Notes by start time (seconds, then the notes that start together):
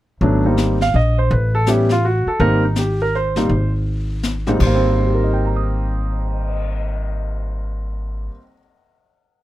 0.21 G#1 F#3 A3 B3 D4, brush sweep
0.45 G3 A#3 C4 D#4
0.57 snare, hi-hat pedal
0.81 F5, snare
0.94 A#1 D#5
1.18 C5
1.30 A1 B4, brush sweep
1.55 A4
1.66 G3 B3 C#4 E4 G4, snare, hi-hat pedal
1.89 F4, snare
2.05 F#4
2.27 A4, muted upright bass stroke
2.39 G#1 G3 A#3 C4 D#4 A#4, brush sweep
2.65 D#4
2.76 G4, snare, hi-hat pedal
3.02 A#4
3.15 C5
3.36 G3 A#3 C4 D#4, snare
3.49 G#1, brush sweep
4.23 snare, hi-hat pedal
4.47 G#2 G3 A#3 C4 D#4, snare
4.58 G#1 G3, kick, crash
4.62 A#3 C5
4.75 C4
4.83 cymbal swell
4.99 D#4
5.07 G4
5.15 A#4
5.24 D#5
5.33 G5
5.45 A#5
5.56 D#6